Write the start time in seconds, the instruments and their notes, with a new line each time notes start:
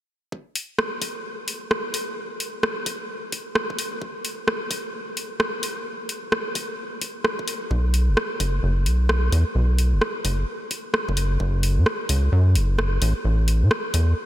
0.32 kick
0.55 open hi-hat
0.79 cross-stick
1.02 kick, open hi-hat
1.48 open hi-hat
1.71 cross-stick
1.94 open hi-hat
2.40 open hi-hat
2.63 cross-stick
2.86 kick, open hi-hat
3.32 kick, open hi-hat
3.55 cross-stick
3.70 kick
3.79 open hi-hat
4.02 kick
4.25 open hi-hat
4.48 cross-stick
4.71 kick, open hi-hat
5.17 open hi-hat
5.40 cross-stick
5.63 open hi-hat
6.09 open hi-hat
6.32 cross-stick
6.55 kick, open hi-hat
7.01 kick, open hi-hat
7.24 cross-stick
7.39 kick
7.48 open hi-hat
7.71 analog synth bass B1, kick
7.94 open hi-hat
8.08 analog synth bass F#1
8.17 cross-stick
8.40 analog synth bass F#1, kick, open hi-hat
8.63 analog synth bass F#1
8.86 analog synth bass B1, open hi-hat
9.09 cross-stick
9.32 analog synth bass E2, open hi-hat
9.55 analog synth bass B1
9.78 open hi-hat
9.93 analog synth bass F#1
10.01 cross-stick
10.25 analog synth bass F#1, kick, open hi-hat
10.71 kick, open hi-hat
10.94 cross-stick
11.09 analog synth bass F#1, kick
11.17 open hi-hat
11.40 analog synth bass F#1, kick
11.63 open hi-hat
11.78 analog synth bass F#2
11.86 cross-stick
12.09 analog synth bass C#2, kick, open hi-hat
12.32 analog synth bass F#2
12.55 analog synth bass F#1, open hi-hat
12.79 cross-stick
13.02 analog synth bass A1, open hi-hat
13.25 analog synth bass A1
13.48 open hi-hat
13.62 analog synth bass A2
13.71 cross-stick
13.94 analog synth bass E2, kick, open hi-hat